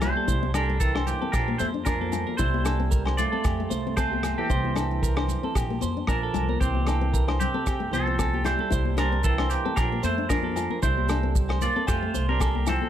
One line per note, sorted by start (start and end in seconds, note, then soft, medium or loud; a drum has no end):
0.00 0.11 C2 medium
0.00 0.51 G3 medium
0.00 0.21 E4 medium
0.00 0.52 E4 medium
0.00 0.15 G4 medium
0.00 0.51 C5 medium
0.00 cross-stick medium
0.00 closed hi-hat medium
0.00 low conga medium
0.00 low agogo medium
0.00 maracas medium
0.16 0.27 A4 medium
0.16 high conga medium
0.28 1.10 C2 medium
0.28 0.48 E4 medium
0.28 0.53 C5 medium
0.28 kick medium
0.28 maracas medium
0.43 high conga medium
0.54 0.79 G3 medium
0.54 0.65 D4 medium
0.54 0.80 D4 medium
0.54 0.79 A4 medium
0.54 0.80 A#4 medium
0.54 cross-stick medium
0.54 closed hi-hat soft
0.54 low agogo medium
0.54 maracas medium
0.70 muted nylon-string guitar stroke medium
0.80 1.05 E3 medium
0.80 1.06 C4 medium
0.80 1.08 A4 medium
0.80 0.94 A#4 medium
0.80 kick medium
0.80 maracas medium
0.95 1.15 D4 medium
0.95 1.20 C5 medium
0.95 cross-stick medium
0.95 low agogo medium
1.07 1.32 E3 medium
1.07 1.33 A#3 medium
1.07 1.32 G4 medium
1.07 closed hi-hat soft
1.07 low conga medium
1.07 maracas medium
1.21 1.42 C4 medium
1.21 1.33 A4 medium
1.32 1.54 A#1 medium
1.32 1.59 F3 medium
1.32 1.58 D4 medium
1.32 1.59 G4 medium
1.32 1.58 A#4 medium
1.32 kick medium
1.32 cross-stick medium
1.32 low agogo medium
1.32 maracas medium
1.48 1.68 A#3 medium
1.58 2.22 F2 medium
1.58 1.72 A3 medium
1.58 1.67 E4 medium
1.58 1.66 C5 medium
1.58 1.85 C5 medium
1.58 closed hi-hat soft
1.58 high conga medium
1.58 maracas medium
1.74 1.83 D4 medium
1.85 2.36 F3 medium
1.85 2.06 D4 medium
1.85 2.35 D4 medium
1.85 2.37 A#4 medium
1.85 2.00 A#4 medium
1.85 kick medium
1.85 cross-stick medium
1.85 low agogo medium
1.85 maracas medium
2.01 2.26 A4 medium
2.01 high conga medium
2.12 2.32 F4 medium
2.12 closed hi-hat soft
2.12 low conga medium
2.12 low agogo medium
2.12 maracas medium
2.27 2.38 A#4 medium
2.27 high conga medium
2.37 3.21 C2 medium
2.37 3.14 G3 medium
2.37 3.14 E4 medium
2.37 2.59 E4 medium
2.37 3.17 C5 medium
2.37 2.64 C5 medium
2.37 kick medium
2.37 maracas medium
2.54 high conga medium
2.65 2.76 D4 medium
2.65 2.91 A4 medium
2.65 cross-stick medium
2.65 closed hi-hat soft
2.65 low agogo medium
2.65 maracas medium
2.80 2.99 C4 medium
2.91 3.05 A#4 medium
2.91 kick medium
2.91 maracas medium
3.05 3.26 D4 medium
3.05 3.31 C5 medium
3.05 cross-stick medium
3.05 low agogo medium
3.17 3.94 A3 medium
3.17 3.94 F4 medium
3.17 3.96 D5 loud
3.17 closed hi-hat medium
3.17 low conga medium
3.17 maracas medium
3.32 3.52 C4 medium
3.32 3.44 A4 medium
3.44 3.65 F2 medium
3.44 3.70 G4 medium
3.44 kick medium
3.44 cross-stick medium
3.44 low agogo medium
3.44 maracas medium
3.60 3.79 A3 medium
3.70 4.32 C2 medium
3.70 3.96 C5 medium
3.70 closed hi-hat soft
3.70 high conga medium
3.70 maracas medium
3.87 3.95 C4 medium
3.97 4.36 A3 medium
3.97 4.17 C4 medium
3.97 4.36 F4 medium
3.97 4.11 A4 medium
3.97 4.39 C5 medium
3.97 kick medium
3.97 cross-stick medium
3.97 low agogo medium
3.97 maracas medium
4.11 4.37 G4 medium
4.11 high conga medium
4.23 cross-stick medium
4.23 closed hi-hat medium
4.23 low conga medium
4.23 low agogo medium
4.23 maracas medium
4.38 5.93 E3 medium
4.38 5.93 C4 medium
4.38 5.92 G4 medium
4.38 4.50 A4 medium
4.38 high conga medium
4.50 5.33 C2 loud
4.50 4.69 E4 medium
4.50 4.75 C5 medium
4.50 kick medium
4.50 maracas medium
4.65 high conga medium
4.75 4.87 D4 medium
4.75 5.02 A4 medium
4.75 cross-stick medium
4.75 closed hi-hat soft
4.75 low agogo medium
4.75 maracas medium
4.91 5.11 C4 medium
5.03 5.17 A#4 medium
5.03 kick medium
5.03 maracas medium
5.17 5.37 D4 medium
5.17 5.43 C5 medium
5.17 cross-stick medium
5.17 low agogo medium
5.28 closed hi-hat soft
5.28 low conga medium
5.28 maracas medium
5.43 5.63 C4 medium
5.43 5.55 A4 medium
5.55 5.76 A#1 medium
5.55 5.81 G4 medium
5.55 kick medium
5.55 cross-stick medium
5.55 low agogo medium
5.55 maracas medium
5.70 5.90 A#3 medium
5.81 6.03 F2 medium
5.81 6.07 C5 medium
5.81 closed hi-hat soft
5.81 high conga medium
5.81 maracas medium
5.97 6.06 D4 medium
6.07 6.32 A#1 medium
6.07 6.57 F3 medium
6.07 6.28 D4 medium
6.07 6.58 D4 medium
6.07 6.60 A#4 medium
6.07 6.22 A#4 medium
6.07 kick medium
6.07 cross-stick medium
6.07 low agogo medium
6.07 maracas medium
6.23 6.48 A4 medium
6.34 6.59 C2 medium
6.34 muted nylon-string guitar stroke medium
6.34 closed hi-hat soft
6.34 low conga medium
6.34 low agogo medium
6.34 maracas medium
6.49 6.61 A#4 medium
6.49 high conga medium
6.60 7.43 C2 loud
6.60 7.36 E3 medium
6.60 6.80 C4 medium
6.60 7.37 C4 medium
6.60 7.39 G4 medium
6.60 6.86 C5 medium
6.60 kick medium
6.60 maracas medium
6.75 high conga medium
6.87 6.98 D4 medium
6.87 7.12 A4 medium
6.87 cross-stick medium
6.87 closed hi-hat soft
6.87 low agogo medium
6.87 maracas medium
7.01 7.21 C4 medium
7.13 7.27 A#4 medium
7.13 kick medium
7.13 maracas medium
7.28 7.48 D4 medium
7.28 7.53 C5 medium
7.28 cross-stick medium
7.28 low agogo medium
7.40 7.89 C3 medium
7.40 7.90 C4 medium
7.40 7.93 G4 medium
7.40 closed hi-hat medium
7.40 low conga medium
7.40 maracas medium
7.54 7.74 C4 medium
7.54 7.66 A4 medium
7.67 7.87 F2 medium
7.67 7.92 G4 medium
7.67 kick medium
7.67 cross-stick medium
7.67 low agogo medium
7.67 maracas medium
7.80 8.00 A3 medium
7.91 8.53 C2 medium
7.91 8.41 F3 medium
7.91 8.45 A4 medium
7.91 8.18 C5 medium
7.91 closed hi-hat soft
7.91 high conga medium
7.91 maracas medium
7.95 8.43 C4 medium
8.07 8.16 C4 medium
8.19 8.38 C4 medium
8.19 8.33 A4 medium
8.19 kick medium
8.19 cross-stick medium
8.19 low agogo medium
8.19 maracas medium
8.34 8.59 G4 medium
8.34 high conga medium
8.44 8.94 G3 medium
8.44 8.64 E4 medium
8.44 8.95 E4 medium
8.44 8.94 C5 medium
8.44 cross-stick medium
8.44 closed hi-hat medium
8.44 low conga medium
8.44 low agogo medium
8.44 maracas medium
8.59 8.71 A4 medium
8.59 high conga medium
8.70 9.54 C2 medium
8.70 8.90 E4 medium
8.70 8.97 C5 medium
8.70 kick medium
8.70 maracas medium
8.85 high conga medium
8.97 9.23 G3 medium
8.97 9.08 D4 medium
8.97 9.23 D4 medium
8.97 9.24 A#4 medium
8.97 9.23 C5 medium
8.97 cross-stick medium
8.97 closed hi-hat soft
8.97 low agogo medium
8.97 maracas medium
9.12 9.32 C4 medium
9.24 9.48 E3 medium
9.24 9.50 C4 medium
9.24 9.51 A4 medium
9.24 9.38 A#4 medium
9.24 kick medium
9.24 maracas medium
9.38 9.59 D4 medium
9.38 9.64 C5 medium
9.38 cross-stick medium
9.38 low agogo medium
9.50 9.75 E3 medium
9.50 9.76 A#3 medium
9.50 9.77 G4 medium
9.50 closed hi-hat soft
9.50 maracas medium
9.65 9.85 C4 medium
9.65 9.76 A4 medium
9.76 9.97 A#1 medium
9.76 10.02 F3 medium
9.76 10.02 D4 medium
9.76 10.02 G4 medium
9.76 10.04 A#4 medium
9.76 kick medium
9.76 cross-stick medium
9.76 low agogo medium
9.76 maracas medium
9.92 10.11 A#3 medium
10.03 10.65 F2 medium
10.03 10.28 A3 medium
10.03 10.29 E4 medium
10.03 10.28 C5 medium
10.03 10.29 C5 medium
10.03 closed hi-hat soft
10.03 high conga medium
10.03 maracas medium
10.18 10.27 D4 medium
10.29 10.79 F3 medium
10.29 10.50 D4 medium
10.29 10.79 D4 medium
10.29 10.78 A#4 medium
10.29 10.44 A#4 medium
10.29 kick medium
10.29 cross-stick medium
10.29 low agogo medium
10.29 maracas medium
10.43 10.69 A4 medium
10.43 high conga medium
10.56 10.76 F4 medium
10.56 closed hi-hat soft
10.56 low agogo medium
10.56 maracas medium
10.70 10.82 A#4 medium
10.70 high conga medium
10.82 11.65 C2 medium
10.82 11.57 G3 medium
10.82 11.02 E4 medium
10.82 11.58 E4 medium
10.82 11.07 C5 medium
10.82 11.57 C5 medium
10.82 kick medium
10.82 maracas medium
10.98 high conga medium
11.09 11.20 D4 medium
11.09 11.34 A4 medium
11.09 cross-stick medium
11.09 closed hi-hat soft
11.09 low agogo medium
11.09 maracas medium
11.23 11.43 C4 medium
11.35 kick medium
11.35 maracas medium
11.49 11.69 D4 medium
11.49 11.74 C5 medium
11.49 cross-stick medium
11.49 low agogo medium
11.61 11.86 A#3 medium
11.61 11.87 F4 medium
11.61 11.86 D5 medium
11.61 closed hi-hat soft
11.61 low conga medium
11.61 maracas medium
11.76 11.96 C4 medium
11.76 11.87 A4 medium
11.87 12.09 F2 medium
11.87 12.26 A3 medium
11.87 12.26 F4 medium
11.87 12.13 G4 medium
11.87 12.26 C5 medium
11.87 kick medium
11.87 cross-stick medium
11.87 low agogo medium
11.87 maracas medium
12.03 12.22 A3 medium
12.14 12.77 C2 medium
12.14 12.39 C5 medium
12.14 closed hi-hat soft
12.14 high conga medium
12.14 maracas medium
12.29 12.65 G3 medium
12.29 12.37 C4 medium
12.29 12.65 D4 medium
12.29 12.68 A#4 medium
12.40 12.59 C4 medium
12.40 12.54 A4 medium
12.40 kick medium
12.40 cross-stick medium
12.40 low agogo medium
12.40 maracas medium
12.55 12.80 G4 medium
12.55 high conga medium
12.67 12.89 F3 medium
12.67 12.89 C4 medium
12.67 12.86 E4 medium
12.67 12.89 A4 medium
12.67 cross-stick medium
12.67 closed hi-hat medium
12.67 low conga medium
12.67 low agogo medium
12.67 maracas medium
12.82 12.89 A4 medium
12.82 high conga medium